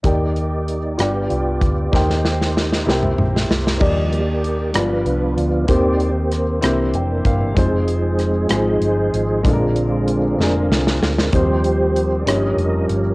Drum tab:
CC |------------|------------|x-----------|------------|
HH |x-x-x-x-x-x-|------------|--x-x-x-x-x-|x-x-x-x-x-x-|
SD |------r-----|ooooooo--ooo|------r-----|----r-r-----|
T2 |------------|-------oo---|------------|------------|
BD |o---------o-|o-----------|o-----------|o---------o-|

CC |------------|------------|------------|
HH |x-x-x-x-x-x-|x-x-x-------|x-x-x-x-x-x-|
SD |----r-r-----|------o-oooo|------r-----|
T2 |------------|------------|------------|
BD |o-----------|o-----------|o-----------|